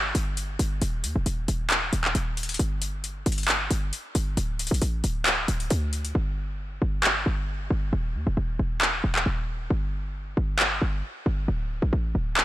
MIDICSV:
0, 0, Header, 1, 3, 480
1, 0, Start_track
1, 0, Tempo, 444444
1, 881, Time_signature, 4, 2, 24, 8
1, 13442, End_track
2, 0, Start_track
2, 0, Title_t, "808-style bass"
2, 0, Program_c, 0, 38
2, 0, Note_on_c, 0, 31, 104
2, 142, Note_off_c, 0, 31, 0
2, 161, Note_on_c, 0, 31, 102
2, 622, Note_off_c, 0, 31, 0
2, 641, Note_on_c, 0, 31, 102
2, 871, Note_off_c, 0, 31, 0
2, 881, Note_on_c, 0, 27, 107
2, 1121, Note_on_c, 0, 39, 100
2, 1137, Note_off_c, 0, 27, 0
2, 1242, Note_off_c, 0, 39, 0
2, 1248, Note_on_c, 0, 27, 101
2, 1357, Note_off_c, 0, 27, 0
2, 1361, Note_on_c, 0, 27, 103
2, 1592, Note_off_c, 0, 27, 0
2, 1602, Note_on_c, 0, 27, 104
2, 2062, Note_off_c, 0, 27, 0
2, 2081, Note_on_c, 0, 27, 102
2, 2312, Note_off_c, 0, 27, 0
2, 2322, Note_on_c, 0, 27, 112
2, 2783, Note_off_c, 0, 27, 0
2, 2801, Note_on_c, 0, 31, 110
2, 3493, Note_off_c, 0, 31, 0
2, 3522, Note_on_c, 0, 31, 106
2, 3983, Note_off_c, 0, 31, 0
2, 4002, Note_on_c, 0, 31, 99
2, 4232, Note_off_c, 0, 31, 0
2, 4482, Note_on_c, 0, 31, 104
2, 4712, Note_off_c, 0, 31, 0
2, 4722, Note_on_c, 0, 26, 113
2, 5074, Note_off_c, 0, 26, 0
2, 5089, Note_on_c, 0, 33, 105
2, 5197, Note_off_c, 0, 33, 0
2, 5202, Note_on_c, 0, 33, 105
2, 5432, Note_off_c, 0, 33, 0
2, 5442, Note_on_c, 0, 26, 102
2, 5903, Note_off_c, 0, 26, 0
2, 5922, Note_on_c, 0, 26, 103
2, 6152, Note_off_c, 0, 26, 0
2, 6162, Note_on_c, 0, 38, 112
2, 6623, Note_off_c, 0, 38, 0
2, 6642, Note_on_c, 0, 31, 115
2, 7333, Note_off_c, 0, 31, 0
2, 7362, Note_on_c, 0, 31, 101
2, 7823, Note_off_c, 0, 31, 0
2, 7842, Note_on_c, 0, 31, 98
2, 8303, Note_off_c, 0, 31, 0
2, 8321, Note_on_c, 0, 31, 100
2, 8552, Note_off_c, 0, 31, 0
2, 8562, Note_on_c, 0, 27, 110
2, 8801, Note_on_c, 0, 39, 105
2, 8817, Note_off_c, 0, 27, 0
2, 8922, Note_off_c, 0, 39, 0
2, 8928, Note_on_c, 0, 27, 103
2, 9035, Note_off_c, 0, 27, 0
2, 9041, Note_on_c, 0, 27, 105
2, 9272, Note_off_c, 0, 27, 0
2, 9281, Note_on_c, 0, 27, 100
2, 9742, Note_off_c, 0, 27, 0
2, 9762, Note_on_c, 0, 27, 101
2, 9992, Note_off_c, 0, 27, 0
2, 10001, Note_on_c, 0, 27, 107
2, 10462, Note_off_c, 0, 27, 0
2, 10481, Note_on_c, 0, 31, 113
2, 11172, Note_off_c, 0, 31, 0
2, 11201, Note_on_c, 0, 31, 106
2, 11662, Note_off_c, 0, 31, 0
2, 11681, Note_on_c, 0, 31, 100
2, 11912, Note_off_c, 0, 31, 0
2, 12161, Note_on_c, 0, 31, 105
2, 12392, Note_off_c, 0, 31, 0
2, 12401, Note_on_c, 0, 26, 114
2, 12754, Note_off_c, 0, 26, 0
2, 12768, Note_on_c, 0, 33, 101
2, 12877, Note_off_c, 0, 33, 0
2, 12881, Note_on_c, 0, 33, 104
2, 13112, Note_off_c, 0, 33, 0
2, 13121, Note_on_c, 0, 26, 102
2, 13442, Note_off_c, 0, 26, 0
2, 13442, End_track
3, 0, Start_track
3, 0, Title_t, "Drums"
3, 161, Note_on_c, 9, 42, 74
3, 269, Note_off_c, 9, 42, 0
3, 401, Note_on_c, 9, 42, 76
3, 509, Note_off_c, 9, 42, 0
3, 641, Note_on_c, 9, 42, 76
3, 749, Note_off_c, 9, 42, 0
3, 881, Note_on_c, 9, 42, 78
3, 989, Note_off_c, 9, 42, 0
3, 1121, Note_on_c, 9, 42, 93
3, 1229, Note_off_c, 9, 42, 0
3, 1361, Note_on_c, 9, 42, 88
3, 1469, Note_off_c, 9, 42, 0
3, 1601, Note_on_c, 9, 42, 73
3, 1709, Note_off_c, 9, 42, 0
3, 1840, Note_on_c, 9, 39, 116
3, 1841, Note_on_c, 9, 42, 83
3, 1948, Note_off_c, 9, 39, 0
3, 1949, Note_off_c, 9, 42, 0
3, 2081, Note_on_c, 9, 42, 67
3, 2189, Note_off_c, 9, 42, 0
3, 2209, Note_on_c, 9, 39, 65
3, 2317, Note_off_c, 9, 39, 0
3, 2321, Note_on_c, 9, 42, 75
3, 2429, Note_off_c, 9, 42, 0
3, 2562, Note_on_c, 9, 42, 50
3, 2626, Note_off_c, 9, 42, 0
3, 2626, Note_on_c, 9, 42, 60
3, 2690, Note_off_c, 9, 42, 0
3, 2690, Note_on_c, 9, 42, 68
3, 2746, Note_off_c, 9, 42, 0
3, 2746, Note_on_c, 9, 42, 80
3, 2802, Note_off_c, 9, 42, 0
3, 2802, Note_on_c, 9, 42, 78
3, 2910, Note_off_c, 9, 42, 0
3, 3042, Note_on_c, 9, 42, 97
3, 3150, Note_off_c, 9, 42, 0
3, 3282, Note_on_c, 9, 42, 78
3, 3390, Note_off_c, 9, 42, 0
3, 3522, Note_on_c, 9, 42, 67
3, 3585, Note_off_c, 9, 42, 0
3, 3585, Note_on_c, 9, 42, 58
3, 3649, Note_off_c, 9, 42, 0
3, 3649, Note_on_c, 9, 42, 49
3, 3706, Note_off_c, 9, 42, 0
3, 3706, Note_on_c, 9, 42, 40
3, 3761, Note_on_c, 9, 39, 121
3, 3762, Note_off_c, 9, 42, 0
3, 3762, Note_on_c, 9, 42, 85
3, 3869, Note_off_c, 9, 39, 0
3, 3870, Note_off_c, 9, 42, 0
3, 4002, Note_on_c, 9, 42, 76
3, 4110, Note_off_c, 9, 42, 0
3, 4242, Note_on_c, 9, 42, 75
3, 4350, Note_off_c, 9, 42, 0
3, 4482, Note_on_c, 9, 42, 77
3, 4590, Note_off_c, 9, 42, 0
3, 4722, Note_on_c, 9, 42, 79
3, 4830, Note_off_c, 9, 42, 0
3, 4962, Note_on_c, 9, 42, 92
3, 5041, Note_off_c, 9, 42, 0
3, 5041, Note_on_c, 9, 42, 73
3, 5121, Note_off_c, 9, 42, 0
3, 5121, Note_on_c, 9, 42, 53
3, 5201, Note_off_c, 9, 42, 0
3, 5201, Note_on_c, 9, 42, 84
3, 5309, Note_off_c, 9, 42, 0
3, 5441, Note_on_c, 9, 42, 72
3, 5549, Note_off_c, 9, 42, 0
3, 5680, Note_on_c, 9, 39, 119
3, 5681, Note_on_c, 9, 42, 80
3, 5788, Note_off_c, 9, 39, 0
3, 5789, Note_off_c, 9, 42, 0
3, 5921, Note_on_c, 9, 42, 72
3, 6029, Note_off_c, 9, 42, 0
3, 6049, Note_on_c, 9, 42, 41
3, 6157, Note_off_c, 9, 42, 0
3, 6161, Note_on_c, 9, 42, 78
3, 6269, Note_off_c, 9, 42, 0
3, 6402, Note_on_c, 9, 42, 64
3, 6510, Note_off_c, 9, 42, 0
3, 6530, Note_on_c, 9, 42, 64
3, 6638, Note_off_c, 9, 42, 0
3, 7600, Note_on_c, 9, 39, 122
3, 7708, Note_off_c, 9, 39, 0
3, 9520, Note_on_c, 9, 39, 126
3, 9628, Note_off_c, 9, 39, 0
3, 9888, Note_on_c, 9, 39, 66
3, 9996, Note_off_c, 9, 39, 0
3, 11440, Note_on_c, 9, 39, 126
3, 11548, Note_off_c, 9, 39, 0
3, 13360, Note_on_c, 9, 39, 121
3, 13442, Note_off_c, 9, 39, 0
3, 13442, End_track
0, 0, End_of_file